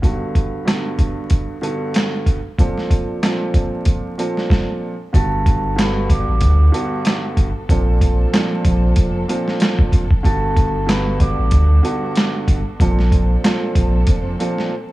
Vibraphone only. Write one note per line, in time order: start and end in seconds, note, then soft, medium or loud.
5.14 5.74 A4 loud
5.14 5.74 A5 medium
5.78 6.07 B4 medium
5.78 6.07 B5 medium
6.10 7.19 D5 medium
6.10 7.20 D6 medium
10.26 10.85 A4 loud
10.26 10.86 A5 medium
10.88 11.17 B4 medium
10.88 11.17 B5 medium
11.20 12.30 D5 medium
11.20 12.30 D6 medium